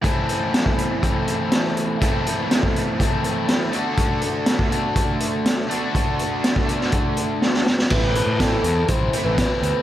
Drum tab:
CC |----------------|----------------|----------------|----------------|
HH |x-x-x-x-x-x-x-x-|x-x-x-x-x-x-x-x-|x-x-x-x-x-x-x-x-|x-x-x-x-x-x-----|
SD |----o-------o---|----o-------o---|----o-------o---|----o--o----oooo|
BD |o----o--o-------|o----o--o-------|o----o--o-------|o----o--o-------|

CC |x---------------|
HH |--x-x-x-x-x-x-x-|
SD |----o-------o---|
BD |o---o---o---o---|